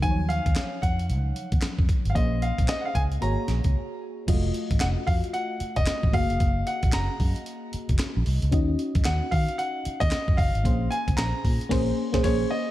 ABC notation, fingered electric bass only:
X:1
M:4/4
L:1/16
Q:"Swing 16ths" 1/4=113
K:Bbm
V:1 name="Fingered electric bass" clef=bass
E,,3 E,, z2 F,,2 D,,2 z E,, z F,, z A,,, | B,,,3 B,,, z2 D,,2 A,,, z B,,, D,, z4 | F,,,2 z =A,,, F,,, z F,, z4 F,,, z A,,, G,,, F,,, | G,,,2 z B,,, G,,, z G,, z4 G,,, z B,,, C,, D,, |
E,,2 z G,, E,, z E, z4 E,, z G,, G,,, A,,, | B,,,2 z D,, B,,, z B,, z B,,,2 z B,,, B,,,2 z2 |]